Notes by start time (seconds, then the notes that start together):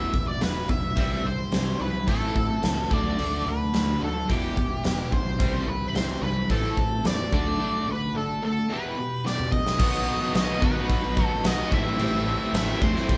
Already playing: E2 B2 E3 E5
0.00 E3 G3 B3 E4
0.13 E1 E2 B2 E3 G3 B3 E4, kick
0.27 D5
0.41 E1 E2 B2 E3 G3 B3 E4 B4, snare, open hi-hat
0.55 E3 G3 B3 E4
0.69 E1 E2 B2 E5, kick
0.82 E3 G3 B3 E4
0.97 C2 C3 E3 G3 C4 E4, kick, open hi-hat
1.24 C2 C3 E3 G3 C4 E4 C5
1.52 C2 C3 E3 G3 C4 E4, snare, open hi-hat
1.80 C2 C3 E3 G3 C4 E4 B4
1.94 G3 C4 E4
2.07 A1 A2 E3 A3 C4 E4 A4, kick, open hi-hat
2.22 A3 C4 E4
2.35 A2 E3 A3 C4, kick
2.39 E4
2.63 C#2 A2 E3 A3 C4 E4, snare, open hi-hat
2.78 A3 C4 E4
2.91 D2 D3 A3 D4 F#4 D5, kick
3.19 D2 D3 A3 D4, open hi-hat
3.47 D2 D3 A3 D4 F#4 B4
3.74 D2 D3 A3 D4 F#4, snare, open hi-hat
4.01 D2 D3 A3 D4 F#4 A4
4.15 A3 D4 F#4
4.29 E1 E2 B2 E3 G3 B3 E4 G4, kick, open hi-hat
4.43 E3 G3 B3 E4
4.55 E1 E2 B2 E3 G3 B3 E4, kick
4.84 E1 E2 B2 E3 G3 B3 E4, snare, open hi-hat
4.98 E3 G3 B3 E4
5.12 B1 E2 B2 C5, kick
5.26 E3 G3 B3 E4
5.40 C2 C3 E3 G3 C4 E4, kick, open hi-hat
5.66 C2 C3 E3 G3 C4 E4 B4
5.89 B4
5.94 C2 C3 E3 G3 C4 E4 C5, snare, open hi-hat
6.22 C2 C3 E3 G3 C4 E4 B4
6.36 G3 C4 E4
6.49 A1 A2 E3 A3 C4 E4 A4, kick, open hi-hat
6.62 A3 C4 E4
6.77 A2 E3 A3 C4 E4, kick
7.04 E2 A2 E3 A3 C4 E4 D5, snare, open hi-hat
7.18 A3 C4 E4
7.32 D2 D3 A3 D4 F#4 D5, kick
7.60 D3 A3 D4
7.87 D3 A3 D4 F#4 B4
8.15 D3 A3 D4 F#4 A4
8.41 D3 A3 D4 F#4 A4
8.56 A3 D4 F#4
8.70 E2 B2 E3 G3 B3 G4 B4
8.84 E3 G3 B3 G4
8.97 E2 B2 E3 G3 B3 G4
9.25 E2 B2 E3 G3 B3 G4 D5, snare
9.38 E3 G3 B3 G4, mid tom
9.52 E2 B2 D#5, kick
9.65 E3 G3 B3 G4, snare
9.79 B1 B2 D#3 F#3 B3 D#4 F#4, kick, crash
10.07 D#3 F#3 B3 D#4
10.20 F#3 B3 D#4 F#4
10.34 B1 B2 D#3 F#3 B3 D#4 F#4 D#5, snare, crash
10.48 B2 F#3 B3 D#4 F#4
10.62 F#1 B2 F#3 B3 D#4 F#4 B4, muted overdriven electric guitar stroke, kick
10.75 F#3 B3 D#4 F#4
10.89 B1, kick, crash
11.03 F#3 B3 D#4 F#4, muted distorted electric guitar stroke
11.16 D#3 F#3 B3 D#4, kick
11.20 F#4
11.25 A4
11.32 muted distorted electric guitar stroke
11.44 B1 B2 D#3 F#3 B3 D#4 F#4 D#5, snare, crash
11.58 F#3 B3 D#4 F#4
11.71 A1 A2 E3 G3 A3 C4 E4 G4 E5, kick
11.85 G3 A3 C4 E4 G4
11.99 A1 A2 E3 G3 A3 C4 E4 G4, crash
12.13 G3 C4 G4
12.26 E3 A3 C4 E4
12.40 G3 A3 C4 E4 G4
12.54 A1 A2 E3 A3 C4 E4 E5, snare, crash
12.67 G3 C4 E4 G4
12.71 A2 E3 A3
12.82 E1 E3 G3 A3 C4 E4 G4 C5, muted overdriven electric guitar stroke, kick
12.95 A3 C4 E4, snare
13.09 A1, kick, crash